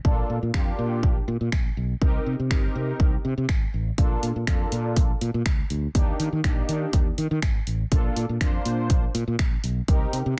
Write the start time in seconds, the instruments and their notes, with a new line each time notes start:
0.05 fretless electric bass A#1, analog polysynth A#3 D4 F4 A4, kick
0.30 fretless electric bass A#2
0.43 fretless electric bass A#2
0.54 fretless electric bass F2, analog polysynth A#3 D4 F4 G4, finger snap, kick
0.79 fretless electric bass A#2
1.03 fretless electric bass A#1, kick
1.28 fretless electric bass A#2
1.41 fretless electric bass A#2
1.52 fretless electric bass A#1, finger snap, kick
1.77 fretless electric bass B1
2.01 fretless electric bass C2, analog polysynth C4 D#4 G4 A#4, kick
2.26 fretless electric bass C3
2.39 fretless electric bass C3
2.51 fretless electric bass G1, analog polysynth C4 D#4 G4 A#4, finger snap, kick
2.75 fretless electric bass C3
3.00 fretless electric bass C2, kick
3.25 fretless electric bass C3
3.38 fretless electric bass C3
3.49 fretless electric bass G#1, finger snap, kick
3.74 fretless electric bass A1
3.98 fretless electric bass A#1, analog polysynth A#3 D4 F4 A4, kick, closed hi-hat
4.23 fretless electric bass A#2, closed hi-hat
4.36 fretless electric bass A#2
4.47 fretless electric bass F2, analog polysynth A#3 D4 F4 A4, finger snap, kick, closed hi-hat
4.72 fretless electric bass A#2, closed hi-hat
4.96 fretless electric bass A#1, kick, closed hi-hat
5.21 fretless electric bass A#2, closed hi-hat
5.34 fretless electric bass A#2
5.46 fretless electric bass C#2, finger snap, kick, closed hi-hat
5.70 fretless electric bass D2, closed hi-hat
5.95 fretless electric bass D#2, analog polysynth A#3 D4 D#4 G4, kick, closed hi-hat
6.20 fretless electric bass D#3, closed hi-hat
6.33 fretless electric bass D#3
6.44 fretless electric bass A#1, analog polysynth A#3 D4 D#4 G4, finger snap, kick, closed hi-hat
6.69 fretless electric bass D#3, closed hi-hat
6.93 fretless electric bass D#2, kick, closed hi-hat
7.18 fretless electric bass D#3, closed hi-hat
7.31 fretless electric bass D#3
7.42 fretless electric bass G#1, finger snap, kick, closed hi-hat
7.67 fretless electric bass A1, closed hi-hat
7.91 fretless electric bass A#1, analog polysynth A#3 D4 F4 A4, kick, closed hi-hat
8.16 fretless electric bass A#2, closed hi-hat
8.29 fretless electric bass A#2
8.41 fretless electric bass F2, analog polysynth A#3 D4 F4 C5, finger snap, kick, closed hi-hat
8.65 fretless electric bass A#2, closed hi-hat
8.90 fretless electric bass A#1, kick, closed hi-hat
9.15 fretless electric bass A#2, closed hi-hat
9.28 fretless electric bass A#2
9.39 fretless electric bass A#1, finger snap, kick, closed hi-hat
9.64 fretless electric bass B1, closed hi-hat
9.88 fretless electric bass C2, analog polysynth C4 D#4 G4 A#4, kick, closed hi-hat
10.13 fretless electric bass C3, closed hi-hat
10.26 fretless electric bass C3